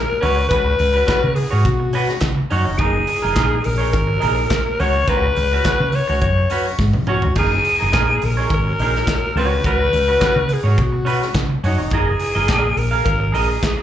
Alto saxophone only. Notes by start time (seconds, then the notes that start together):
Already playing: A#4
0.21 B4
0.49 B4
1.35 G#4
1.65 F#4
2.51 D#4
2.78 G#4
3.65 A#4
3.93 A#4
4.80 C#5
5.09 B4
5.95 C#5
6.21 C#5
7.09 F#4
7.39 G#4
8.25 A#4
8.54 A#4
9.39 B4
9.66 B4
10.53 G#4
10.82 F#4
11.66 D#4
11.95 G#4
12.78 A#4
13.05 A#4
13.35 G#4